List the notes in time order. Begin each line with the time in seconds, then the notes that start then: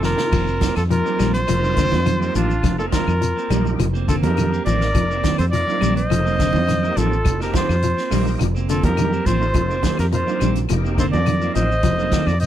Already playing: F1
0.02 D#3 F3 A#3 C4 F4 A#4 G5, snare, shekere
0.18 A#3 D#4 G4, snare, low conga
0.32 F1 D#3 F3 A#3 C4, kick, crash, low conga, claves, shekere
0.47 C4, shekere
0.61 A#3 C4, kick, snare, closed hi-hat, high conga, shekere
0.76 F2 F4 A4, snare, closed hi-hat, claves, shekere
0.90 F3 A#3 D#4 F4 G4 A#4, closed hi-hat, shekere
1.05 A#3 C4, high conga, shekere
1.19 A#1 D#3 G3 A#3 C4, snare, closed hi-hat, high conga, claves, shekere
1.34 F4 C5, closed hi-hat, shekere
1.48 F1 F3 A#3 D#4 A#4, closed hi-hat, low conga, claves, shekere
1.63 A#3 C4, high conga, shekere
1.76 D3 D#3 A#3 C4, kick, closed hi-hat, shekere
1.92 F2, snare, high conga, shekere
2.06 D#3, closed hi-hat, high conga, claves, shekere
2.20 A#3 C4 D#4 G4, shekere
2.35 A1 D#3 F3 A#3 C4 D4 F4, closed hi-hat, shekere
2.50 shekere
2.63 F1 F3, kick, snare, closed hi-hat, low conga, claves, shekere
2.78 A#3 C4 D#4 F4 A4 A#4, shekere
2.91 D#3 A#3 C4 F4 A#4, kick, snare, closed hi-hat, high conga, shekere
3.08 F2, claves, shekere
3.22 F3, closed hi-hat, shekere
3.36 A#3 C4, shekere
3.50 A#1 D#3 G3 A#3 D#4 G4, closed hi-hat, high conga, claves, shekere
3.65 low conga, shekere
3.79 F1 F3, closed hi-hat, low conga, claves, shekere
3.94 A#3 C4, shekere
4.08 D3 D#3 A#3 C4 F4 A4, kick, closed hi-hat, shekere
4.22 F2 A#3 D#4 G4 A4 A#4, closed hi-hat, high conga, shekere
4.37 D#3, closed hi-hat, high conga, claves, shekere
4.53 A#3 C4, shekere
4.65 A1 D#3 F3 A#3 C4 A#4 D5, closed hi-hat, shekere
4.81 A#3 D#4 A#4, snare, shekere
4.95 F1 F3, kick, closed hi-hat, low conga, claves, shekere
5.10 A#3 C4, shekere
5.24 D#3 A#3 C4, kick, snare, closed hi-hat, high conga, shekere
5.38 F2 A4 C5, closed hi-hat, claves, shekere
5.51 F3 A#3 D#4 F4 A#4 D5, closed hi-hat, shekere
5.67 C4, muted clean electric guitar stroke, high conga, shekere
5.81 A#1 D#3 G3 A#3 C4, closed hi-hat, high conga, claves, shekere
5.96 C5 D#5, closed hi-hat, shekere
6.10 F1 F3 A#3 D#4 A4, closed hi-hat, low conga, claves, shekere
6.24 A#3 C4, high conga, shekere
6.39 D3 D#3 A#3 C4, kick, snare, closed hi-hat, shekere
6.53 F2, high conga, shekere
6.67 D#3, snare, closed hi-hat, high conga, claves, shekere
6.83 A#3 C4 D#4 G4, shekere
6.97 A1 D#3 F3 A#3 C4 F4 A4, closed hi-hat, shekere
7.13 shekere
7.25 F1, muted clean electric guitar stroke, kick, closed hi-hat, low conga, claves, shekere
7.40 A#3 C4 D#4 G4 A#4, snare, shekere
7.54 D#3 A#3 C4 F4 C5, kick, snare, closed hi-hat, high conga, shekere
7.69 F2, snare, claves, shekere
7.82 F3, closed hi-hat, shekere
7.97 A#3 C4, snare, shekere
8.11 A#1 D#3 G3 A#3 C4 D#4 G4, open hi-hat, high conga, claves, shekere
8.27 shekere
8.39 F1 F3, closed hi-hat, low conga, claves, shekere
8.55 A#3 C4, shekere
8.69 D3 A#3 C4 F4 A4, muted clean electric guitar stroke, closed hi-hat, shekere
8.83 F2 A#3 D#4 G4 A#4, kick, closed hi-hat, high conga, shekere
8.97 D#3, closed hi-hat, high conga, claves, shekere
9.13 A#3 C4, shekere
9.26 A1 D#3 F3 A#3 C4 F4 C5, kick, closed hi-hat, shekere
9.41 A#3 D#4 A4, shekere
9.54 F1 F3, kick, closed hi-hat, low conga, claves, shekere
9.70 A#3 C4, shekere
9.83 D#3 A#3 C4, kick, snare, closed hi-hat, high conga, shekere
9.98 F2 A#4, snare, closed hi-hat, claves, shekere
10.02 G4
10.12 F3 A#3 D#4 F4 A#4 C5, closed hi-hat, shekere
10.27 A#3 C4, high conga, shekere
10.40 A#1 D#3 G3 A#3 C4, closed hi-hat, high conga, claves, shekere
10.55 closed hi-hat, low conga, shekere
10.69 F1 F3 A#3 D#4 G4, closed hi-hat, low conga, claves, shekere
10.84 A#3 C4, shekere
10.98 D3 D#3 A#3 C4 A4 C5, kick, closed hi-hat, shekere
11.12 F2 A#4 D5, high conga, shekere
11.26 D#3, closed hi-hat, high conga, claves, shekere
11.41 A#3 C4 D#4 F4, shekere
11.54 A1 D#3 F3 C4 C5 D#5, closed hi-hat, shekere
11.72 shekere
11.83 F1 F3, kick, snare, closed hi-hat, low conga, claves, shekere
11.98 A#3 C4 D#4 A4, high conga, shekere
12.11 D#3 A#3 C4, kick, snare, closed hi-hat, high conga, shekere
12.26 F2 A#4 D5, snare, claves, shekere
12.40 C5 D#5, closed hi-hat, shekere